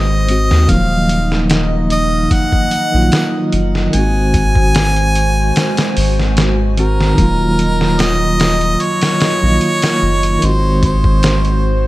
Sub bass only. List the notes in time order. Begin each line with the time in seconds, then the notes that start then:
Already playing: G#1
0.51 D#2
0.70 D#1
2.94 A#1
3.53 F#1
3.94 G#1
5.97 G#1
7.18 D#1
9.43 A#1
10.03 F#1
10.43 G#1